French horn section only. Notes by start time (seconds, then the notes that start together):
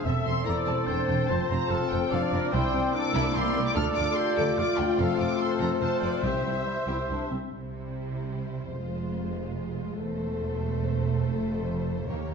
0.05 C4 A4
1.29 F4
2.53 C4 E4
3.76 A3 F4
6.24 G3 G4